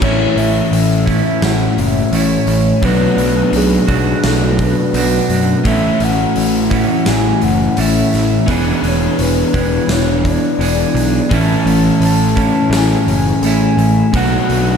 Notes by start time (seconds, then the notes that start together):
0.01 A1 A2 E3 A3 C#4 C#5, kick, crash
0.05 E4
0.36 A1 E5, open hi-hat
0.72 A1 E5, open hi-hat
1.06 A2 E3 A3 C#4 E4 E5, kick, open hi-hat
1.42 A1 F#5, snare, open hi-hat
1.78 F#1 E5, open hi-hat
2.11 A1 A2 E3 A3 C#4, open hi-hat
2.15 E4 C#5
2.47 A1, open hi-hat
2.81 B1 B2 F#3 A3 B3 D4 B4, kick, open hi-hat
2.85 F#4
3.17 B1, open hi-hat
3.52 B1, open hi-hat
3.57 G#4
3.88 B1 B2 F#3 A3 D4 F#4, kick, open hi-hat
4.24 B1 A4, snare, open hi-hat
4.59 B4, kick, open hi-hat
4.94 B1 B2 F#3 A3 D4 B4, open hi-hat
4.98 F#4
5.30 F#2, open hi-hat
5.64 A1 A2 E3 A3 C#4 E4, kick, open hi-hat
5.68 E5
6.00 A1 F#5, open hi-hat
6.36 A1, open hi-hat
6.70 A2 E3 A3 C#4 E4 F#5, kick, open hi-hat
7.06 A1 G#5, snare, open hi-hat
7.42 F#1 F#5, open hi-hat
7.76 A1 A2 E3 A3 C#4 E5, open hi-hat
7.80 E4
8.13 A1, snare, open hi-hat
8.47 E1 E3 B3 D4 G#4 D5, kick, open hi-hat
8.83 E1, open hi-hat
8.87 C#5
9.19 E1 B4, open hi-hat
9.54 E1 E3 B3 D4 G#4, kick, open hi-hat
9.88 E1 C#5, snare, open hi-hat
10.25 D5, kick, open hi-hat
10.59 E1 E3 B3 D4 G#4 D5, open hi-hat
10.94 B1, open hi-hat
11.31 A1 A2 E3 A3 C#4 E4 A5, kick, open hi-hat
11.65 A1, open hi-hat
12.00 A1 A5, open hi-hat
12.36 A2 E3 A3 C#4 E4, kick, open hi-hat
12.70 A1, snare, open hi-hat
12.76 G#5
13.07 F#1, open hi-hat
13.42 A1 A2 E3 A3 C#4, open hi-hat
13.46 E4 G#5
13.77 A1, open hi-hat
14.12 B1 B2 F#3 A3 B3 D4, kick, open hi-hat
14.16 F#4 F#5
14.50 B1, open hi-hat